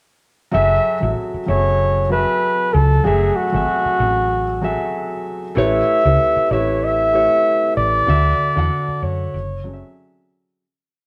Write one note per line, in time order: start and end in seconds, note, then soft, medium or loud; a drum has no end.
0.51 0.78 F#1 medium
0.51 0.92 F#3 medium
0.51 0.92 F#4 medium
0.51 0.93 G#4 medium
0.51 0.93 A4 medium
0.51 1.12 E5 loud
0.51 0.93 E5 medium
1.00 1.13 A1 medium
1.00 1.39 F#3 medium
1.00 1.40 F#4 soft
1.00 1.40 G#4 soft
1.00 1.40 A4 medium
1.00 1.41 E5 medium
1.34 muted fingered electric bass stroke soft
1.46 2.24 F#1 medium
1.46 2.00 F#3 medium
1.46 2.00 F#4 medium
1.46 2.00 G#4 medium
1.46 2.01 A4 medium
1.46 2.07 C#5 medium
1.46 2.01 E5 medium
2.09 2.89 F#3 medium
2.09 2.89 F#4 medium
2.09 2.89 G#4 medium
2.09 2.90 A4 medium
2.09 2.75 B4 loud
2.09 2.90 E5 medium
2.73 2.98 C#2 medium
2.73 3.06 A4 medium
3.04 3.29 F#1 medium
3.04 3.44 F#3 medium
3.04 3.45 A3 medium
3.04 3.44 F#4 medium
3.04 3.37 G#4 medium
3.04 3.44 G#4 medium
3.04 3.45 E5 medium
3.36 5.25 F#4 medium
3.52 3.65 G#1 medium
3.52 4.43 F#3 medium
3.52 4.43 F#4 medium
3.52 4.44 G#4 medium
3.52 4.44 A4 medium
3.52 4.45 E5 medium
3.86 muted fingered electric bass stroke soft
4.00 4.75 A1 medium
4.61 5.40 F#3 medium
4.61 5.41 F#4 medium
4.61 5.41 G#4 medium
4.61 5.41 A4 medium
4.61 5.42 E5 medium
5.55 5.81 A1 medium
5.55 5.95 A3 medium
5.55 5.95 E4 medium
5.55 5.96 G4 medium
5.55 5.96 B4 medium
5.55 5.97 C#5 loud
5.55 6.54 E5 loud
6.04 6.16 C#2 medium
6.04 6.42 A3 medium
6.04 6.43 E4 soft
6.04 6.43 G4 medium
6.04 6.43 B4 medium
6.04 6.44 C#5 medium
6.37 muted fingered electric bass stroke soft
6.50 7.27 A1 medium
6.50 7.03 A3 medium
6.50 7.03 E4 medium
6.50 7.04 G4 medium
6.50 7.04 B4 medium
6.50 6.86 C#5 medium
6.50 7.04 E5 medium
6.85 7.76 E5 loud
7.12 7.92 A3 medium
7.12 7.92 E4 medium
7.12 7.92 G4 medium
7.12 7.93 B4 medium
7.12 7.93 C#5 medium
7.77 8.01 A1 medium
7.77 9.05 D5 loud
8.07 8.32 D2 loud
8.07 8.47 D3 medium
8.07 8.47 D4 medium
8.07 8.47 F#4 medium
8.07 8.48 D5 medium
8.07 8.48 E5 medium
8.56 8.68 E2 medium
8.56 9.33 D3 medium
8.56 9.34 D4 medium
8.56 9.34 F#4 medium
8.56 9.34 A4 medium
8.56 9.35 F#5 medium
8.88 muted fingered electric bass stroke soft
9.02 9.26 F#2 medium
9.02 9.97 C#5 medium
9.34 9.82 F#1 medium
9.64 10.43 F#3 medium
9.64 10.44 C#4 medium
9.64 10.44 G#4 soft
9.64 10.44 A4 soft
9.64 9.73 D5 soft
9.73 10.48 E5 medium